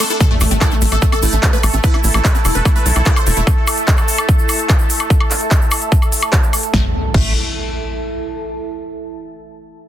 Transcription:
Already playing: A3 D4
0.00 A3 A4, open hi-hat, ride, high woodblock, shaker
0.10 E4 A4, closed hi-hat, shaker
0.20 A3 E4 A4, kick, closed hi-hat, impact, shaker
0.31 A3 A4
0.41 A1 A3, open hi-hat, high woodblock, shaker
0.51 A1 A3 C4, closed hi-hat, shaker
0.61 E4 A4 E5, kick, clap, closed hi-hat, high woodblock, shaker
0.71 A3 B3 A5, shaker
0.81 A1 A3, open hi-hat, shaker
0.92 A1 A3 A4, closed hi-hat, high woodblock, shaker
1.02 A3, kick, closed hi-hat, shaker
1.12 C4 A4, high woodblock, shaker
1.22 A1 A3 E4, open hi-hat, shaker
1.33 A1 A3 B3, closed hi-hat, shaker
1.43 A3, kick, clap, closed hi-hat, high woodblock, shaker
1.53 A3 B4, shaker
1.63 A1 A3, open hi-hat, high woodblock, shaker
1.73 A1 A3 C4, closed hi-hat, shaker
1.83 E4 B4, kick, closed hi-hat, shaker
1.94 B3 E4, high woodblock
2.04 A1 A3 E4, open hi-hat, shaker
2.14 A1 A3 E4, closed hi-hat, high woodblock, shaker
2.25 A3 B4, kick, clap, closed hi-hat, shaker
2.35 C4 E4, shaker
2.45 E1 E4, open hi-hat, high woodblock, shaker
2.55 E1 B3 B4, closed hi-hat, shaker
2.65 A3 E4, kick, closed hi-hat, high woodblock, shaker
2.76 A3 B4, shaker
2.86 B1 A3 E4, open hi-hat, shaker
2.96 B1 C4 E4, closed hi-hat, high woodblock, shaker
3.05 E4, kick, clap, closed hi-hat, shaker
3.16 B3 C5, high woodblock, shaker
3.27 E1 A3 E4, open hi-hat, shaker
3.37 E1 A3 E4, closed hi-hat, shaker
3.47 kick, closed hi-hat, high woodblock, shaker
3.67 open hi-hat, high woodblock, shaker
3.77 closed hi-hat, shaker
3.88 kick, clap, closed hi-hat, shaker
3.97 high woodblock, shaker
4.08 open hi-hat, shaker
4.18 closed hi-hat, high woodblock, shaker
4.29 kick, closed hi-hat, shaker
4.39 shaker
4.49 open hi-hat, high woodblock, shaker
4.59 closed hi-hat, shaker
4.69 kick, clap, closed hi-hat, high woodblock, shaker
4.79 shaker
4.90 open hi-hat, shaker
5.00 closed hi-hat, high woodblock, shaker
5.10 kick, closed hi-hat, shaker
5.20 high woodblock
5.31 clap, open hi-hat, shaker
5.41 closed hi-hat, shaker
5.51 kick, clap, closed hi-hat, high woodblock, shaker
5.62 shaker
5.71 open hi-hat, high woodblock, shaker
5.81 closed hi-hat, shaker
5.92 kick, closed hi-hat, shaker
6.02 high woodblock, shaker
6.12 open hi-hat, shaker
6.23 high woodblock, shaker
6.33 kick, clap, closed hi-hat, shaker
6.43 shaker
6.53 open hi-hat, high woodblock, shaker
6.63 closed hi-hat, shaker
6.74 A1 A3 E4, kick, snare, impact
6.80 A4
6.86 E5
6.92 A5
7.14 A1 A3, kick, crash

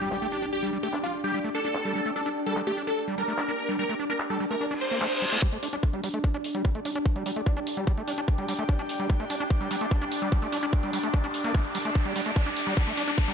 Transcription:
Already playing: D4 G4 D5 G5, impact
0.01 G3
0.12 G3, clap
0.22 A3
0.32 D4
0.42 D4
0.53 G4
0.63 G3
0.73 G3
0.83 A3 G4
0.93 D4, clap
1.04 D4 F4
1.24 G3 G4
1.34 G3
1.44 A3
1.55 D4 A4
1.65 D4
1.75 clap
1.85 G3
1.95 G3
2.06 A3
2.16 D4 A4
2.26 D4
2.46 G3 A4
2.57 G3, clap
2.67 A3 G4
2.77 D4
2.87 D4 A4
3.08 G3
3.18 G3 A#4
3.28 A3
3.38 D4, clap
3.48 D4
3.69 G3
3.79 G3 A#4
3.89 A3
3.99 D4
4.10 D4 A#4
4.20 clap
4.30 G3 A4
4.40 G3
4.50 A3 A#4
4.61 D4, reverse cymbal
4.71 D4
4.81 C5
4.91 A#3
5.01 A3, clap
5.22 G3
5.32 A3
5.42 G3 D4, kick, closed hi-hat, riser
5.53 A3, closed hi-hat
5.63 D4, open hi-hat
5.73 D4, closed hi-hat
5.83 kick, closed hi-hat
5.93 G3 G4, closed hi-hat
6.04 G3, open hi-hat
6.14 A3, closed hi-hat
6.20 D4 D5, kick, closed hi-hat
6.34 D4, closed hi-hat
6.44 open hi-hat
6.55 G3, closed hi-hat
6.65 G3, kick, closed hi-hat
6.75 A3, closed hi-hat
6.85 D4, open hi-hat
6.95 D4 G5, closed hi-hat
7.06 kick, closed hi-hat
7.16 G3, closed hi-hat
7.26 G3, open hi-hat
7.36 A3, closed hi-hat
7.46 D4, kick, closed hi-hat
7.57 D4, closed hi-hat
7.67 open hi-hat
7.77 G3, closed hi-hat
7.87 G3, kick, closed hi-hat
7.97 A3, closed hi-hat
8.08 D4, open hi-hat
8.18 D4, closed hi-hat
8.28 kick, closed hi-hat
8.38 G3, closed hi-hat
8.48 G3, open hi-hat
8.59 A3, closed hi-hat
8.69 D4, kick, closed hi-hat
8.79 D4, closed hi-hat
8.89 open hi-hat
8.99 G3, closed hi-hat
9.10 G3, kick, closed hi-hat
9.20 A3, closed hi-hat
9.30 D4, open hi-hat
9.40 D4, closed hi-hat
9.50 kick, closed hi-hat
9.61 G3, closed hi-hat
9.71 G3, open hi-hat
9.81 A3, closed hi-hat
9.91 D4, kick, closed hi-hat
10.01 D4, closed hi-hat
10.12 open hi-hat
10.22 G3, closed hi-hat
10.32 G3, kick, closed hi-hat
10.42 A3, closed hi-hat
10.52 D4, open hi-hat
10.63 D4, closed hi-hat
10.73 kick, closed hi-hat
10.83 G3, closed hi-hat
10.93 G3, open hi-hat
11.03 A3, closed hi-hat
11.14 D4, kick, closed hi-hat
11.24 D4, closed hi-hat
11.34 open hi-hat
11.44 A#3, closed hi-hat
11.55 A3, kick, closed hi-hat
11.65 closed hi-hat
11.75 G3, open hi-hat
11.85 A3, closed hi-hat
11.95 kick, closed hi-hat
12.06 G3, closed hi-hat
12.16 G3, open hi-hat
12.26 A3, closed hi-hat
12.36 D4, kick, closed hi-hat
12.46 D4, closed hi-hat
12.57 open hi-hat
12.67 G3, closed hi-hat
12.77 G3, kick, closed hi-hat
12.87 A3, closed hi-hat
12.97 D4, open hi-hat
13.08 D4, closed hi-hat
13.18 kick, closed hi-hat
13.28 G3, closed hi-hat

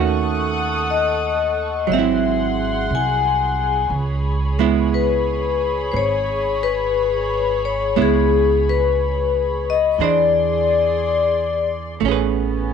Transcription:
Already playing: D#2 D#3 A3 C#4 F#4 A4 F#5 C#6 D#6
0.90 D#5
1.87 G#1 F#3 G#4 F#5 C6
1.92 C4 E5
1.99 E4
2.90 C2
2.95 G#5
3.90 C#2 C#5 B5
4.59 G#3 B3 E4
4.94 B4
5.92 G#1 C5
5.97 C#5
6.63 B4
7.65 C#5
7.96 C#2 G#3 B3 E4
8.02 G#4
8.69 B4
9.70 D#5
9.98 E2 E3 D4 G#4 C5 D5 C6
10.04 D5
12.00 A1 A3 B3 C#4
12.05 C#4 G#4
12.12 B4

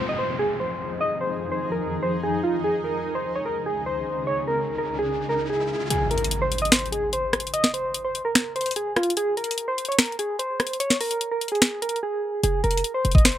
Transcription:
Already playing: F2 F3 D#4 G#4, downlifter
0.09 D#5
0.19 C5
0.39 G#4
0.60 C5
1.01 D#5
1.21 C5
1.52 C5
1.72 A#4
2.03 C5
2.23 G#4
2.43 F4
2.64 C#2 C#3 G#4, riser
2.84 A#4
3.15 C5
3.35 C#5
3.46 A#4
3.66 G#4
3.86 C5
4.27 C#5
4.47 A#4
4.78 A#4
4.99 G#4
5.29 A#4
5.50 G#4
5.90 G#4, closed hi-hat, impact
6.11 A#4, closed hi-hat
6.18 closed hi-hat
6.24 closed hi-hat
6.31 closed hi-hat
6.42 C5
6.52 closed hi-hat
6.58 D#5, closed hi-hat
6.65 closed hi-hat
6.72 C5, finger snap, snare, closed hi-hat
6.79 closed hi-hat
6.86 closed hi-hat
6.92 G#4, closed hi-hat
7.13 C5, closed hi-hat
7.33 cross-stick, closed hi-hat
7.40 closed hi-hat
7.47 closed hi-hat
7.54 D#5, closed hi-hat
7.64 snare
7.74 C5, closed hi-hat
7.94 closed hi-hat
8.05 C5
8.15 closed hi-hat
8.25 A#4
8.35 finger snap, snare, closed hi-hat
8.56 C5, closed hi-hat
8.61 closed hi-hat
8.66 closed hi-hat
8.71 closed hi-hat
8.76 G#4, closed hi-hat
8.96 F4, cross-stick, closed hi-hat
9.03 closed hi-hat
9.10 closed hi-hat
9.17 G#4, closed hi-hat
9.37 A#4, closed hi-hat
9.44 closed hi-hat
9.51 closed hi-hat
9.58 closed hi-hat
9.68 C5
9.78 closed hi-hat
9.85 C#5, closed hi-hat
9.92 closed hi-hat
9.98 A#4, finger snap, snare, closed hi-hat
10.06 closed hi-hat
10.12 closed hi-hat
10.19 G#4, closed hi-hat
10.39 C5, closed hi-hat
10.60 cross-stick, closed hi-hat
10.67 closed hi-hat
10.73 closed hi-hat
10.80 C#5, closed hi-hat
10.90 snare
11.01 A#4, closed hi-hat, open hi-hat
11.11 closed hi-hat
11.21 closed hi-hat
11.31 A#4
11.41 closed hi-hat
11.48 G#4, closed hi-hat
11.55 closed hi-hat
11.62 finger snap, snare, closed hi-hat
11.82 A#4, closed hi-hat
11.89 closed hi-hat
11.96 closed hi-hat
12.03 G#4
12.43 F1 G#4, closed hi-hat
12.64 F1 A#4, closed hi-hat
12.71 closed hi-hat
12.77 closed hi-hat
12.84 closed hi-hat
12.94 C5
13.05 F1, closed hi-hat
13.12 D#5, kick, closed hi-hat
13.18 closed hi-hat
13.25 C5, finger snap, snare, closed hi-hat
13.32 closed hi-hat

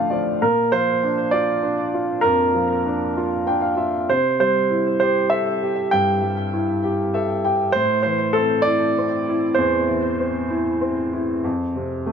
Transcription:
Already playing: A1 A2 D3 F3 A3 F5
0.10 F3 D5
0.41 A#2 A#4
0.72 F3 C5
1.03 D4
1.31 F4 D5
1.63 D4
1.94 F4
2.21 F2 A#4
2.54 F3
2.86 D4
3.17 F4
3.47 D4 G5
3.61 F5
3.76 F4 E5
4.09 C3 C5
4.40 G3 C5
4.71 E4
5.00 G4 C5
5.30 A4 E5
5.63 G4
5.91 G2 G5
6.23 G3
6.53 E4
6.84 G4
7.14 A4 E5
7.44 G4 G5
7.72 A2 C5
8.03 E3 C5
8.33 C4 A4
8.62 D5
8.67 E4
8.98 C4
9.29 E4
9.55 E2 C5
9.89 E3
10.20 C4
10.51 E4
10.81 C4
11.13 E4
11.44 F2
11.75 C3
12.06 A3

